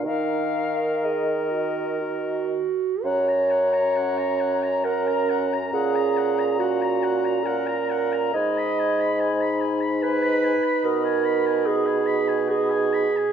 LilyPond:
<<
  \new Staff \with { instrumentName = "Oboe" } { \time 3/4 \key ees \minor \tempo 4 = 68 bes'2~ bes'8. r16 | \key fis \major fis''16 ais''16 fis''16 ais''16 fis''16 ais''16 fis''16 ais''16 fis''16 ais''16 fis''16 ais''16 | fis''16 ais''16 fis''16 ais''16 fis''16 ais''16 fis''16 ais''16 fis''16 ais''16 fis''16 ais''16 | gis''16 b''16 gis''16 b''16 gis''16 b''16 gis''16 b''16 gis''16 b''16 gis''16 b''16 |
dis''16 gis''16 b''16 gis''16 dis''16 gis''16 b''16 gis''16 dis''16 gis''16 b''16 gis''16 | }
  \new Staff \with { instrumentName = "Flute" } { \time 3/4 \key ees \minor f''4 ees''4. r8 | \key fis \major ais''2.~ | ais''2. | b''2.~ |
b''2~ b''8 r8 | }
  \new Staff \with { instrumentName = "Clarinet" } { \time 3/4 \key ees \minor ees'4 aes'8 ges'8 ges'4 | \key fis \major cis''2 ais'4 | gis'4 fis'4 ais'4 | dis''4. r8 b'4 |
ais'4 gis'4 gis'4 | }
  \new Staff \with { instrumentName = "French horn" } { \time 3/4 \key ees \minor bes'2~ bes'8 r8 | \key fis \major cis'2.~ | cis'2. | dis'2.~ |
dis'2~ dis'8 r8 | }
  \new Staff \with { instrumentName = "Bassoon" } { \clef bass \time 3/4 \key ees \minor ees2~ ees8 r8 | \key fis \major fis,2. | ais,2. | gis,2~ gis,8 r8 |
b,2. | }
>>